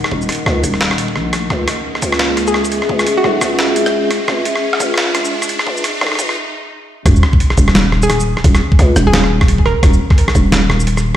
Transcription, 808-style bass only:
0.12 D#1
0.46 C#2
0.63 D#1
1.15 A#1
1.50 C#2
2.02 C#2
2.89 C#2
3.24 B1
3.41 C#2
4.28 C#2
4.80 C#2
5.67 C#2
6.01 B1
6.19 C#2
7.06 D#1
7.58 D#1
8.44 D#1
8.79 C#2
8.96 D#1
9.83 D#1
10.35 D#1

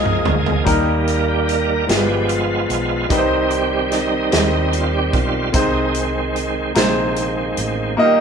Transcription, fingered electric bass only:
Already playing: C2
0.27 D2
0.67 D#2
1.89 G1
2.70 B1
3.10 C2
4.33 D#2
5.14 B1
5.54 C2
6.76 A#1
7.58 A1

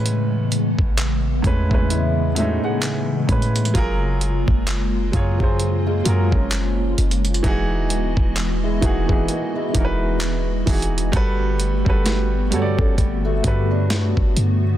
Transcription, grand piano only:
Already playing: A2 G#3 C#4 B4
1.42 A2 G#3 C#4
1.47 B4
1.69 A2 G#3 C#4
1.74 B4
2.35 A2 G#3 C#4 E5
2.40 D#4
2.64 F#5
2.84 G#5
3.27 A2 G#3 C#4 B5
3.32 B4
3.74 F#3 F4 G#4
3.78 A#4
5.12 F#3 F4 G#4
5.17 C#5
5.39 F#3 F4 G#4
5.43 C5
6.04 F#3 F4 G#4
6.09 A#4
7.43 E3 D#4 F#4
7.47 G#4
8.81 E3 D#4 F#4
8.86 G#4
9.08 E3 D#4 F#4
9.13 G#4
9.73 E3 D#4 F#4
9.78 A#4
9.85 B4
10.66 E3 D#4 F#4
10.71 G#4
11.12 G3 F#4 A4
11.17 B4
11.85 G3 F#4 A4
11.90 B4
12.51 G3 F#4 A4
12.55 C#5
12.62 D5
13.43 G3 F#4 A4
13.47 B4

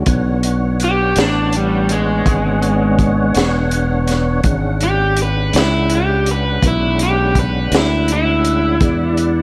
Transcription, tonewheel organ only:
0.07 B3 D4 C#5 F#5
4.46 G#3 C#4 D4 F#5
8.81 G#3 D4 D5 F#5

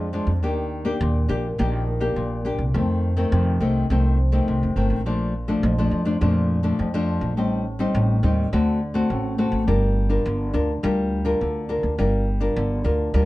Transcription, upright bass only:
Already playing: F2
0.27 F2
0.43 D#2
1.01 D#2
1.29 A#1
1.59 A#1
2.16 A#1
2.58 C2
2.74 F2
3.32 F2
3.60 C2
3.90 C2
4.48 C2
4.63 F1
4.76 G1
4.90 A1
5.05 A#1
5.63 A#1
5.91 F2
6.21 F2
6.79 F2
7.21 A#1
7.37 A1
7.95 A1
8.23 D#2
8.53 D2
9.10 A1
9.52 A1
9.68 G1
10.26 G1
10.54 D2
10.83 D2
11.41 D2
11.83 D2
11.99 G1
12.56 G1
12.85 D2
13.14 D2

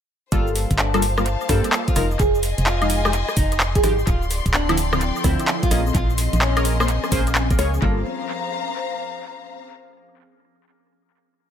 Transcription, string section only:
0.32 C5
0.45 F5
1.07 A5
1.96 D#5
2.18 G#5
2.32 C6
4.07 D5
4.82 G5
5.71 D#5
6.40 G#5
7.82 C5
7.91 F5
7.99 A#5

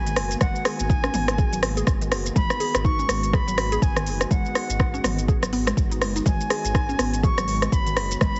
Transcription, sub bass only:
Already playing: G#1
0.16 F#1
0.41 G#1
0.80 G#1
1.14 G#1
1.53 G#1
1.87 G#1
2.12 F#1
2.36 G#1
2.75 G#1
3.09 G#1
3.48 G#1
3.82 G#1
4.06 F#1
4.31 G#1
4.69 G#1
5.04 G#1
5.43 G#1
5.77 G#1
6.02 F#1
6.26 G#1
6.65 G#1
6.99 G#1
7.38 G#1
7.72 G#1
7.97 F#1
8.21 G#1

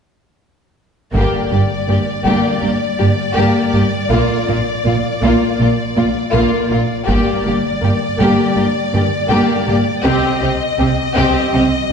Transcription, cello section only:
1.14 G2
1.51 G2
1.88 G2
2.25 G2
2.62 G2
3.00 G2
3.37 G2
3.74 G2
4.11 A#2
4.48 A#2
4.85 A#2
5.23 A#2
5.59 A#2
5.97 A#2
6.34 A#2
6.71 A#2
7.08 G2
7.45 G2
7.82 G2
8.20 G2
8.56 G2
8.93 G2
9.30 G2
9.68 G2
10.05 C3
10.42 C3
10.79 C3
11.16 C3
11.53 C3

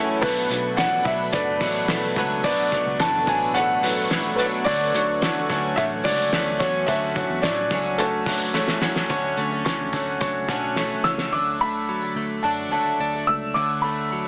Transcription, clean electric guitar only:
Already playing: F#2 E3 A3 C#4
0.23 B2
0.51 F#3
0.78 D4
1.06 F#3
1.34 A3
1.62 F#3
1.89 A3
2.17 F#3
2.44 B2
2.72 F#3
3.00 D4
3.28 F#3
3.55 A3
3.83 F#3
4.10 A3
4.38 F#3
4.66 D3
4.94 F#3
5.50 F#3
5.78 A3
6.05 F#3
6.33 A3
6.61 F#3
7.16 F#3
7.72 F#3
7.99 A3
8.27 F#3
8.54 A3
8.82 F#3
9.09 D3 C#4
9.37 A3
9.66 C#4
9.94 A3
10.22 F#3
10.49 C#4
10.77 A3
11.05 C#4
11.33 D3
11.61 A3
11.89 F#3
12.16 A3
12.44 D4
12.73 A3
13.01 D4
13.28 A3
13.56 D3
13.84 A3
14.12 F#3

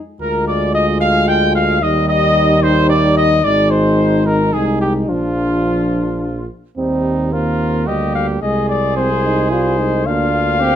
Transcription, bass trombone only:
0.20 D2
1.82 D#2
3.44 G#1
4.54 C2
5.09 A#1
6.78 D#2
7.87 D2
8.42 C2
10.06 D2

